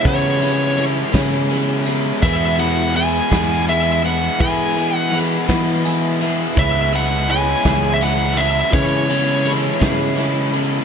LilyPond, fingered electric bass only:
\new Staff \with { instrumentName = "Fingered electric bass" } { \clef bass \time 6/8 \key cis \minor \tempo 4. = 55 cis4. cis4. | e,4. e,4. | e4. e4. | cis,4. cis,4. |
cis4. cis4. | }